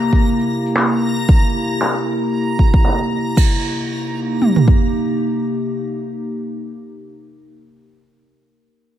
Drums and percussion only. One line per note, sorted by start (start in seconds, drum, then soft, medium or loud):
0.13 kick medium
0.13 shaker medium
0.25 shaker medium
0.39 shaker soft
0.66 shaker medium
0.77 clap medium
0.77 shaker medium
0.92 shaker soft
0.95 shaker soft
0.98 shaker soft
1.01 shaker soft
1.04 shaker soft
1.07 shaker soft
1.11 shaker soft
1.15 shaker soft
1.18 shaker medium
1.29 kick loud
1.45 shaker soft
1.71 shaker medium
1.82 clap medium
1.97 shaker medium
2.23 shaker medium
2.59 kick medium
2.74 kick medium
2.86 clap medium
3.37 kick loud
3.37 crash medium
4.42 mid tom soft
4.56 floor tom medium
4.68 kick medium